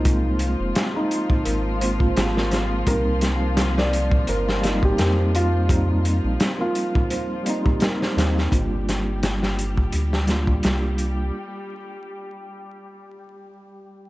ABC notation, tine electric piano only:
X:1
M:4/4
L:1/8
Q:"Swing 16ths" 1/4=85
K:Gphr
V:1 name="Tine electric piano"
[A,B,CF]4- [A,B,CF] [A,B,CF]3 | [G,B,CE]4- [G,B,CE] [G,B,CE]3 | [G,B,CE]4- [G,B,CE] [G,B,CE]3 | [G,B,DF]4- [G,B,DF] [G,B,DF]3 |
z8 |]